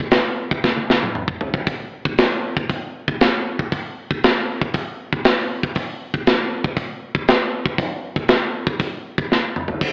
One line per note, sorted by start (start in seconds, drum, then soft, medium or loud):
0.00 kick medium
0.11 snare loud
0.11 open hi-hat medium
0.51 kick medium
0.64 kick medium
0.64 snare medium
0.76 high tom medium
0.90 snare medium
1.03 mid tom medium
1.15 mid tom medium
1.28 kick medium
1.41 floor tom medium
1.54 kick medium
1.67 kick medium
1.67 open hi-hat medium
2.05 kick medium
2.18 snare loud
2.18 open hi-hat medium
2.57 kick medium
2.69 kick medium
2.69 open hi-hat medium
3.08 kick medium
3.21 snare loud
3.21 open hi-hat medium
3.59 kick medium
3.72 kick loud
3.72 open hi-hat medium
4.10 kick medium
4.23 snare loud
4.23 open hi-hat medium
4.61 kick medium
4.74 kick medium
4.74 open hi-hat medium
5.12 kick medium
5.24 snare loud
5.24 open hi-hat medium
5.63 kick medium
5.75 kick loud
5.75 open hi-hat medium
6.14 kick medium
6.27 snare loud
6.27 open hi-hat soft
6.64 kick medium
6.77 kick medium
6.77 open hi-hat medium
7.15 kick medium
7.28 snare loud
7.28 open hi-hat medium
7.66 kick medium
7.79 kick loud
7.79 open hi-hat medium
8.16 kick medium
8.29 snare loud
8.29 open hi-hat medium
8.67 kick medium
8.79 kick medium
8.79 open hi-hat medium
9.18 kick medium
9.32 snare medium
9.56 mid tom medium
9.68 floor tom medium
9.81 kick loud
9.81 crash loud